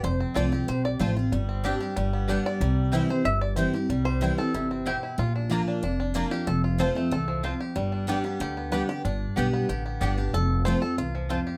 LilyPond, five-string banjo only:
\new Staff \with { instrumentName = "Five-string banjo" } { \time 4/4 \key c \major \tempo 4 = 186 << { c''4 d''4 c''8 d''8 c''4 | r2. r8 d''8~ | d''4. c''8 e''8 d''8 c''8 r8 | r8 c''4 a'4. g'4 |
f'2~ f'8 r4 g'8 | a'4 c''4 a'4 f'8 r8 | r2 g'4 b'8 g'8~ | g'2 r2 |
a'4 c''8 a'2~ a'8 | } \\ { r8 c'4 g'4. r8 f'8 | g8 c'8 d'8 g'8 g8 b8 d'4 | g4 e'4. r4 g'8 | g4 g4 e'8 c'4 e'8 |
r8 d'8 bes8 d'8 d'8 d'8 bes4 | r8 f'4 a4 f4 g'8 | g8 d'8 g8 b4 b4. | d'4 g'8 b8 g'8 b8 d'8 g'8 |
r2 f'8 f8 f'8 g'8 | } >> }